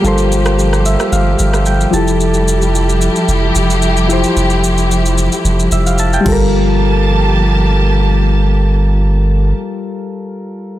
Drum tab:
CC |----------------|----------------|--------------x-|----------------|
SH |xxxxxxxxx-xxxxxx|xxxxxxxxx-xxxxxx|xxxxxxxxxxxxxx--|----------------|
SD |---r-r-r---r----|----------------|----------------|----------------|
BD |----------------|----------------|--------------o-|----------------|

CC |----------------|
SH |----------------|
SD |----------------|
BD |----------------|